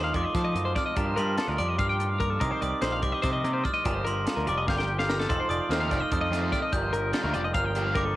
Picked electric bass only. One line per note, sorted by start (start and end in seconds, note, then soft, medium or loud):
0.00 0.13 D#2 medium
0.14 0.24 F2 medium
0.35 0.54 F3 medium
0.55 0.74 F#2 medium
0.97 1.16 G2 loud
1.17 1.37 G2 medium
1.48 1.58 D2 loud
1.59 1.79 F2 medium
1.79 2.37 G2 medium
2.41 2.51 C2 medium
2.62 2.72 C2 medium
2.82 3.01 A#1 medium
3.03 3.13 C2 loud
3.24 3.43 C3 loud
3.44 3.63 C3 medium
3.85 4.05 G1 loud
4.07 4.26 G1 medium
4.37 4.47 D2 medium
4.47 4.68 F1 loud
4.68 5.26 G1 medium
5.30 5.39 F1 medium
5.49 5.59 F1 loud
5.69 5.89 D#2 medium
5.92 6.01 F1 loud
6.12 6.30 F2 loud
6.30 6.50 F2 medium
6.73 6.92 G1 medium
6.92 7.12 G1 medium
7.24 7.34 D2 loud
7.34 7.55 F1 loud
7.55 8.12 G1 loud